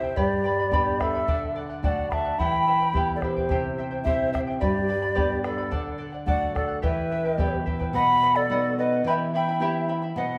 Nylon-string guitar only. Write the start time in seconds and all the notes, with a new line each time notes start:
Already playing: C3 C4 E4 G4
0.16 G2
0.71 B3 D4 G4
1.28 D3
1.83 A3 D4 F#4
2.40 E3
2.93 B3 E4 G4
3.49 C3
4.05 C4 E4 G4
4.61 G2
5.16 B3 D4 G4
5.72 D3
6.26 A3 D4 F#4
6.84 E3
7.37 B3 E4 G4
7.93 B2
8.50 B3 D#4 F#4
9.04 E3
9.60 B3 E4 G4
10.16 B2